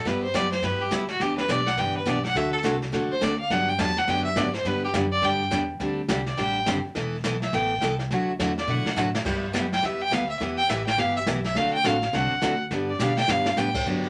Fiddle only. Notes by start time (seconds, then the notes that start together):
0.07 B4
0.23 C5
0.35 D5
0.52 C5
0.64 B4
0.81 G4
0.93 E4
1.10 F#4
1.21 G4
1.38 B4
1.50 D5
1.66 F#5
1.79 G5
1.97 B4
2.08 D5
2.25 F#5
2.37 E5
2.52 A4
3.12 C5
3.23 D5
3.40 F5
3.51 F#5
3.69 G5
3.79 A5
3.98 F#5
4.09 G5
4.24 E5
4.37 D5
4.55 C5
4.67 B4
4.84 G4
5.12 D5
5.24 G5
6.27 D5
6.38 G5
7.43 E5
7.54 G5
8.59 D5
8.70 F#5
9.73 G5
9.85 E5
10.02 G5
10.13 F5
10.29 E5
10.57 G5
10.69 E5
10.87 G5
10.99 F5
11.16 E5
11.46 E5
11.56 F5
11.73 G5
11.86 F5
12.15 F#5
12.89 D5
13.01 F5
13.18 G5
13.30 F5
13.57 G5